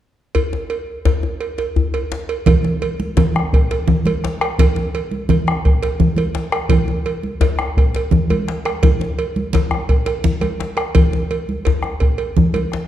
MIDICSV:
0, 0, Header, 1, 4, 480
1, 0, Start_track
1, 0, Tempo, 353565
1, 466, Time_signature, 12, 3, 24, 8
1, 17480, End_track
2, 0, Start_track
2, 0, Title_t, "Bombo"
2, 3359, Note_on_c, 9, 43, 99
2, 3495, Note_off_c, 9, 43, 0
2, 4561, Note_on_c, 9, 37, 70
2, 4696, Note_off_c, 9, 37, 0
2, 4793, Note_on_c, 9, 43, 90
2, 4929, Note_off_c, 9, 43, 0
2, 5754, Note_on_c, 9, 37, 29
2, 5890, Note_off_c, 9, 37, 0
2, 5991, Note_on_c, 9, 37, 77
2, 6127, Note_off_c, 9, 37, 0
2, 6225, Note_on_c, 9, 43, 91
2, 6361, Note_off_c, 9, 43, 0
2, 7439, Note_on_c, 9, 37, 72
2, 7575, Note_off_c, 9, 37, 0
2, 7675, Note_on_c, 9, 43, 89
2, 7811, Note_off_c, 9, 43, 0
2, 8626, Note_on_c, 9, 37, 29
2, 8762, Note_off_c, 9, 37, 0
2, 8857, Note_on_c, 9, 37, 79
2, 8992, Note_off_c, 9, 37, 0
2, 9082, Note_on_c, 9, 43, 97
2, 9218, Note_off_c, 9, 43, 0
2, 10299, Note_on_c, 9, 37, 70
2, 10435, Note_off_c, 9, 37, 0
2, 10547, Note_on_c, 9, 43, 89
2, 10683, Note_off_c, 9, 43, 0
2, 11512, Note_on_c, 9, 37, 29
2, 11648, Note_off_c, 9, 37, 0
2, 11756, Note_on_c, 9, 37, 63
2, 11891, Note_off_c, 9, 37, 0
2, 11984, Note_on_c, 9, 43, 85
2, 12120, Note_off_c, 9, 43, 0
2, 13181, Note_on_c, 9, 37, 62
2, 13317, Note_off_c, 9, 37, 0
2, 13425, Note_on_c, 9, 43, 79
2, 13561, Note_off_c, 9, 43, 0
2, 13678, Note_on_c, 9, 37, 25
2, 13814, Note_off_c, 9, 37, 0
2, 14141, Note_on_c, 9, 37, 24
2, 14277, Note_off_c, 9, 37, 0
2, 14388, Note_on_c, 9, 37, 26
2, 14523, Note_off_c, 9, 37, 0
2, 14627, Note_on_c, 9, 37, 67
2, 14763, Note_off_c, 9, 37, 0
2, 14868, Note_on_c, 9, 43, 80
2, 15004, Note_off_c, 9, 43, 0
2, 16054, Note_on_c, 9, 37, 63
2, 16190, Note_off_c, 9, 37, 0
2, 16307, Note_on_c, 9, 43, 77
2, 16443, Note_off_c, 9, 43, 0
2, 17266, Note_on_c, 9, 37, 26
2, 17402, Note_off_c, 9, 37, 0
2, 17480, End_track
3, 0, Start_track
3, 0, Title_t, "Djembe"
3, 480, Note_on_c, 9, 64, 62
3, 615, Note_off_c, 9, 64, 0
3, 718, Note_on_c, 9, 62, 44
3, 718, Note_on_c, 9, 63, 44
3, 854, Note_off_c, 9, 62, 0
3, 854, Note_off_c, 9, 63, 0
3, 1431, Note_on_c, 9, 62, 66
3, 1431, Note_on_c, 9, 64, 69
3, 1567, Note_off_c, 9, 62, 0
3, 1567, Note_off_c, 9, 64, 0
3, 1672, Note_on_c, 9, 62, 21
3, 1672, Note_on_c, 9, 63, 54
3, 1808, Note_off_c, 9, 62, 0
3, 1808, Note_off_c, 9, 63, 0
3, 1919, Note_on_c, 9, 62, 18
3, 2055, Note_off_c, 9, 62, 0
3, 2147, Note_on_c, 9, 62, 51
3, 2283, Note_off_c, 9, 62, 0
3, 2394, Note_on_c, 9, 64, 66
3, 2530, Note_off_c, 9, 64, 0
3, 2641, Note_on_c, 9, 63, 51
3, 2776, Note_off_c, 9, 63, 0
3, 2874, Note_on_c, 9, 62, 69
3, 3010, Note_off_c, 9, 62, 0
3, 3352, Note_on_c, 9, 64, 64
3, 3487, Note_off_c, 9, 64, 0
3, 3590, Note_on_c, 9, 62, 43
3, 3590, Note_on_c, 9, 63, 46
3, 3726, Note_off_c, 9, 62, 0
3, 3726, Note_off_c, 9, 63, 0
3, 4302, Note_on_c, 9, 62, 67
3, 4302, Note_on_c, 9, 64, 62
3, 4438, Note_off_c, 9, 62, 0
3, 4438, Note_off_c, 9, 64, 0
3, 4554, Note_on_c, 9, 63, 50
3, 4690, Note_off_c, 9, 63, 0
3, 4793, Note_on_c, 9, 62, 21
3, 4929, Note_off_c, 9, 62, 0
3, 5036, Note_on_c, 9, 62, 56
3, 5172, Note_off_c, 9, 62, 0
3, 5267, Note_on_c, 9, 62, 20
3, 5267, Note_on_c, 9, 64, 66
3, 5402, Note_off_c, 9, 62, 0
3, 5402, Note_off_c, 9, 64, 0
3, 5505, Note_on_c, 9, 63, 49
3, 5641, Note_off_c, 9, 63, 0
3, 5762, Note_on_c, 9, 62, 70
3, 5898, Note_off_c, 9, 62, 0
3, 6000, Note_on_c, 9, 62, 22
3, 6136, Note_off_c, 9, 62, 0
3, 6239, Note_on_c, 9, 64, 66
3, 6375, Note_off_c, 9, 64, 0
3, 6465, Note_on_c, 9, 62, 48
3, 6601, Note_off_c, 9, 62, 0
3, 7182, Note_on_c, 9, 64, 63
3, 7318, Note_off_c, 9, 64, 0
3, 7433, Note_on_c, 9, 63, 53
3, 7569, Note_off_c, 9, 63, 0
3, 7684, Note_on_c, 9, 62, 22
3, 7820, Note_off_c, 9, 62, 0
3, 7918, Note_on_c, 9, 62, 55
3, 8054, Note_off_c, 9, 62, 0
3, 8145, Note_on_c, 9, 62, 23
3, 8145, Note_on_c, 9, 64, 68
3, 8281, Note_off_c, 9, 62, 0
3, 8281, Note_off_c, 9, 64, 0
3, 8377, Note_on_c, 9, 63, 52
3, 8513, Note_off_c, 9, 63, 0
3, 8617, Note_on_c, 9, 62, 65
3, 8753, Note_off_c, 9, 62, 0
3, 8862, Note_on_c, 9, 62, 22
3, 8998, Note_off_c, 9, 62, 0
3, 9094, Note_on_c, 9, 64, 75
3, 9230, Note_off_c, 9, 64, 0
3, 9340, Note_on_c, 9, 63, 59
3, 9476, Note_off_c, 9, 63, 0
3, 10058, Note_on_c, 9, 62, 78
3, 10058, Note_on_c, 9, 64, 65
3, 10194, Note_off_c, 9, 62, 0
3, 10194, Note_off_c, 9, 64, 0
3, 10307, Note_on_c, 9, 63, 57
3, 10443, Note_off_c, 9, 63, 0
3, 10556, Note_on_c, 9, 62, 23
3, 10692, Note_off_c, 9, 62, 0
3, 10787, Note_on_c, 9, 62, 53
3, 10922, Note_off_c, 9, 62, 0
3, 11028, Note_on_c, 9, 62, 23
3, 11028, Note_on_c, 9, 64, 70
3, 11163, Note_off_c, 9, 62, 0
3, 11163, Note_off_c, 9, 64, 0
3, 11267, Note_on_c, 9, 63, 58
3, 11403, Note_off_c, 9, 63, 0
3, 11518, Note_on_c, 9, 62, 66
3, 11654, Note_off_c, 9, 62, 0
3, 11765, Note_on_c, 9, 62, 20
3, 11901, Note_off_c, 9, 62, 0
3, 11999, Note_on_c, 9, 64, 70
3, 12135, Note_off_c, 9, 64, 0
3, 12235, Note_on_c, 9, 62, 48
3, 12235, Note_on_c, 9, 63, 52
3, 12370, Note_off_c, 9, 62, 0
3, 12370, Note_off_c, 9, 63, 0
3, 12478, Note_on_c, 9, 62, 22
3, 12614, Note_off_c, 9, 62, 0
3, 12720, Note_on_c, 9, 62, 22
3, 12856, Note_off_c, 9, 62, 0
3, 12960, Note_on_c, 9, 62, 69
3, 12960, Note_on_c, 9, 64, 60
3, 13096, Note_off_c, 9, 62, 0
3, 13096, Note_off_c, 9, 64, 0
3, 13184, Note_on_c, 9, 62, 20
3, 13184, Note_on_c, 9, 63, 56
3, 13320, Note_off_c, 9, 62, 0
3, 13320, Note_off_c, 9, 63, 0
3, 13430, Note_on_c, 9, 62, 18
3, 13565, Note_off_c, 9, 62, 0
3, 13660, Note_on_c, 9, 62, 51
3, 13796, Note_off_c, 9, 62, 0
3, 13914, Note_on_c, 9, 64, 61
3, 14049, Note_off_c, 9, 64, 0
3, 14156, Note_on_c, 9, 63, 48
3, 14292, Note_off_c, 9, 63, 0
3, 14397, Note_on_c, 9, 62, 62
3, 14532, Note_off_c, 9, 62, 0
3, 14639, Note_on_c, 9, 62, 20
3, 14775, Note_off_c, 9, 62, 0
3, 14869, Note_on_c, 9, 64, 63
3, 15005, Note_off_c, 9, 64, 0
3, 15113, Note_on_c, 9, 62, 47
3, 15113, Note_on_c, 9, 63, 43
3, 15249, Note_off_c, 9, 62, 0
3, 15249, Note_off_c, 9, 63, 0
3, 15838, Note_on_c, 9, 62, 61
3, 15838, Note_on_c, 9, 64, 60
3, 15974, Note_off_c, 9, 62, 0
3, 15974, Note_off_c, 9, 64, 0
3, 16072, Note_on_c, 9, 63, 48
3, 16208, Note_off_c, 9, 63, 0
3, 16318, Note_on_c, 9, 62, 21
3, 16453, Note_off_c, 9, 62, 0
3, 16802, Note_on_c, 9, 62, 22
3, 16802, Note_on_c, 9, 64, 67
3, 16938, Note_off_c, 9, 62, 0
3, 16938, Note_off_c, 9, 64, 0
3, 17052, Note_on_c, 9, 63, 52
3, 17188, Note_off_c, 9, 63, 0
3, 17287, Note_on_c, 9, 62, 73
3, 17423, Note_off_c, 9, 62, 0
3, 17480, End_track
4, 0, Start_track
4, 0, Title_t, "Drums"
4, 471, Note_on_c, 9, 56, 51
4, 607, Note_off_c, 9, 56, 0
4, 948, Note_on_c, 9, 56, 42
4, 1084, Note_off_c, 9, 56, 0
4, 1431, Note_on_c, 9, 56, 41
4, 1567, Note_off_c, 9, 56, 0
4, 1907, Note_on_c, 9, 56, 40
4, 2043, Note_off_c, 9, 56, 0
4, 2152, Note_on_c, 9, 56, 39
4, 2288, Note_off_c, 9, 56, 0
4, 2632, Note_on_c, 9, 56, 44
4, 2768, Note_off_c, 9, 56, 0
4, 3111, Note_on_c, 9, 56, 44
4, 3246, Note_off_c, 9, 56, 0
4, 3342, Note_on_c, 9, 64, 78
4, 3353, Note_on_c, 9, 56, 60
4, 3478, Note_off_c, 9, 64, 0
4, 3488, Note_off_c, 9, 56, 0
4, 3822, Note_on_c, 9, 63, 24
4, 3828, Note_on_c, 9, 56, 49
4, 3958, Note_off_c, 9, 63, 0
4, 3964, Note_off_c, 9, 56, 0
4, 4069, Note_on_c, 9, 63, 62
4, 4204, Note_off_c, 9, 63, 0
4, 4310, Note_on_c, 9, 64, 80
4, 4312, Note_on_c, 9, 56, 48
4, 4445, Note_off_c, 9, 64, 0
4, 4447, Note_off_c, 9, 56, 0
4, 4555, Note_on_c, 9, 63, 23
4, 4691, Note_off_c, 9, 63, 0
4, 4804, Note_on_c, 9, 56, 43
4, 4940, Note_off_c, 9, 56, 0
4, 5037, Note_on_c, 9, 56, 43
4, 5173, Note_off_c, 9, 56, 0
4, 5262, Note_on_c, 9, 64, 79
4, 5398, Note_off_c, 9, 64, 0
4, 5504, Note_on_c, 9, 63, 58
4, 5520, Note_on_c, 9, 56, 52
4, 5640, Note_off_c, 9, 63, 0
4, 5656, Note_off_c, 9, 56, 0
4, 5996, Note_on_c, 9, 56, 45
4, 6131, Note_off_c, 9, 56, 0
4, 6236, Note_on_c, 9, 64, 67
4, 6243, Note_on_c, 9, 56, 71
4, 6372, Note_off_c, 9, 64, 0
4, 6378, Note_off_c, 9, 56, 0
4, 6472, Note_on_c, 9, 63, 20
4, 6608, Note_off_c, 9, 63, 0
4, 6710, Note_on_c, 9, 63, 20
4, 6716, Note_on_c, 9, 56, 48
4, 6846, Note_off_c, 9, 63, 0
4, 6852, Note_off_c, 9, 56, 0
4, 6942, Note_on_c, 9, 63, 53
4, 7078, Note_off_c, 9, 63, 0
4, 7182, Note_on_c, 9, 64, 67
4, 7194, Note_on_c, 9, 56, 48
4, 7317, Note_off_c, 9, 64, 0
4, 7330, Note_off_c, 9, 56, 0
4, 7429, Note_on_c, 9, 63, 21
4, 7564, Note_off_c, 9, 63, 0
4, 7672, Note_on_c, 9, 56, 41
4, 7808, Note_off_c, 9, 56, 0
4, 7909, Note_on_c, 9, 56, 49
4, 8044, Note_off_c, 9, 56, 0
4, 8143, Note_on_c, 9, 64, 64
4, 8279, Note_off_c, 9, 64, 0
4, 8369, Note_on_c, 9, 63, 48
4, 8387, Note_on_c, 9, 56, 47
4, 8505, Note_off_c, 9, 63, 0
4, 8523, Note_off_c, 9, 56, 0
4, 8855, Note_on_c, 9, 56, 44
4, 8991, Note_off_c, 9, 56, 0
4, 9089, Note_on_c, 9, 64, 59
4, 9090, Note_on_c, 9, 56, 64
4, 9225, Note_off_c, 9, 56, 0
4, 9225, Note_off_c, 9, 64, 0
4, 9339, Note_on_c, 9, 63, 16
4, 9474, Note_off_c, 9, 63, 0
4, 9570, Note_on_c, 9, 63, 19
4, 9582, Note_on_c, 9, 56, 46
4, 9706, Note_off_c, 9, 63, 0
4, 9718, Note_off_c, 9, 56, 0
4, 9820, Note_on_c, 9, 63, 47
4, 9956, Note_off_c, 9, 63, 0
4, 10066, Note_on_c, 9, 56, 51
4, 10202, Note_off_c, 9, 56, 0
4, 10299, Note_on_c, 9, 63, 21
4, 10435, Note_off_c, 9, 63, 0
4, 10560, Note_on_c, 9, 56, 43
4, 10696, Note_off_c, 9, 56, 0
4, 10807, Note_on_c, 9, 56, 43
4, 10943, Note_off_c, 9, 56, 0
4, 11014, Note_on_c, 9, 64, 71
4, 11150, Note_off_c, 9, 64, 0
4, 11270, Note_on_c, 9, 63, 58
4, 11273, Note_on_c, 9, 56, 48
4, 11406, Note_off_c, 9, 63, 0
4, 11409, Note_off_c, 9, 56, 0
4, 11749, Note_on_c, 9, 56, 45
4, 11884, Note_off_c, 9, 56, 0
4, 11984, Note_on_c, 9, 56, 56
4, 11991, Note_on_c, 9, 64, 71
4, 12120, Note_off_c, 9, 56, 0
4, 12127, Note_off_c, 9, 64, 0
4, 12471, Note_on_c, 9, 56, 50
4, 12606, Note_off_c, 9, 56, 0
4, 12709, Note_on_c, 9, 63, 62
4, 12845, Note_off_c, 9, 63, 0
4, 12939, Note_on_c, 9, 64, 63
4, 12953, Note_on_c, 9, 56, 51
4, 13075, Note_off_c, 9, 64, 0
4, 13088, Note_off_c, 9, 56, 0
4, 13427, Note_on_c, 9, 56, 46
4, 13563, Note_off_c, 9, 56, 0
4, 13660, Note_on_c, 9, 56, 47
4, 13796, Note_off_c, 9, 56, 0
4, 13903, Note_on_c, 9, 64, 64
4, 14039, Note_off_c, 9, 64, 0
4, 14137, Note_on_c, 9, 56, 50
4, 14137, Note_on_c, 9, 63, 51
4, 14273, Note_off_c, 9, 56, 0
4, 14273, Note_off_c, 9, 63, 0
4, 14618, Note_on_c, 9, 56, 44
4, 14753, Note_off_c, 9, 56, 0
4, 14861, Note_on_c, 9, 56, 69
4, 14863, Note_on_c, 9, 64, 62
4, 14997, Note_off_c, 9, 56, 0
4, 14999, Note_off_c, 9, 64, 0
4, 15104, Note_on_c, 9, 63, 19
4, 15240, Note_off_c, 9, 63, 0
4, 15347, Note_on_c, 9, 63, 19
4, 15351, Note_on_c, 9, 56, 44
4, 15483, Note_off_c, 9, 63, 0
4, 15486, Note_off_c, 9, 56, 0
4, 15597, Note_on_c, 9, 63, 54
4, 15733, Note_off_c, 9, 63, 0
4, 15818, Note_on_c, 9, 56, 48
4, 15954, Note_off_c, 9, 56, 0
4, 16081, Note_on_c, 9, 63, 18
4, 16217, Note_off_c, 9, 63, 0
4, 16295, Note_on_c, 9, 56, 42
4, 16430, Note_off_c, 9, 56, 0
4, 16537, Note_on_c, 9, 56, 41
4, 16673, Note_off_c, 9, 56, 0
4, 16787, Note_on_c, 9, 64, 67
4, 16923, Note_off_c, 9, 64, 0
4, 17024, Note_on_c, 9, 56, 48
4, 17026, Note_on_c, 9, 63, 52
4, 17159, Note_off_c, 9, 56, 0
4, 17162, Note_off_c, 9, 63, 0
4, 17480, End_track
0, 0, End_of_file